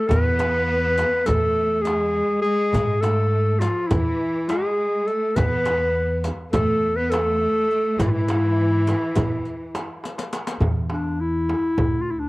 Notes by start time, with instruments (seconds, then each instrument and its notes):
0.08 upright bass E2, cello section B3, clarinet B4, riq, frame drum, darbuka dum
0.39 riq, darbuka tek, frame drum
0.98 riq, darbuka tek, frame drum
1.26 upright bass E2, cello section A3, clarinet A4, riq, frame drum, darbuka dum
1.82 clarinet G#4, riq, frame drum
1.86 cello section A3, darbuka tek
1.98 cello section G#3
2.16 darbuka ka
2.42 cello section G#3, clarinet G#4, riq
2.73 upright bass G#2, riq, frame drum, darbuka dum
3.01 cello section A3, clarinet A4, riq, darbuka tek, frame drum
3.59 cello section F3, clarinet F4, riq, darbuka tek, frame drum
3.87 cello section E3, clarinet E4, riq, frame drum, darbuka dum
3.92 upright bass E2
4.49 cello section G#3, clarinet G#4, riq, darbuka tek, frame drum
4.78 darbuka ka
5.07 cello section A3, clarinet A4, riq
5.36 upright bass E2, cello section B3, clarinet B4, riq, darbuka dum, frame drum
5.65 riq, darbuka tek, frame drum
6.24 riq, darbuka tek, frame drum
6.53 upright bass E2, cello section A3, clarinet A4, riq, darbuka dum, frame drum
6.96 cello section B3, clarinet B4
7.10 clarinet A4, riq, darbuka tek, frame drum
7.15 cello section A3
7.43 darbuka ka
7.71 riq
7.99 upright bass G#2, cello section E3, clarinet E4, riq, frame drum, darbuka dum
8.08 clarinet E4 F4
8.15 cello section E3
8.28 riq, darbuka tek, frame drum
8.87 riq, darbuka tek, frame drum
9.15 upright bass E2, riq, darbuka dum, frame drum
9.45 riq, darbuka ka
9.75 riq, darbuka tek, frame drum
10.04 riq, darbuka tek
10.18 riq, darbuka ka
10.33 riq, darbuka tek
10.47 riq, darbuka ka
10.60 upright bass E2, darbuka dum, frame drum
10.90 clarinet D4, darbuka tek, frame drum
11.21 clarinet E4
11.49 darbuka tek, frame drum
11.78 upright bass D2, frame drum, darbuka dum
12.02 clarinet F4
12.08 clarinet E4, darbuka ka
12.20 clarinet D4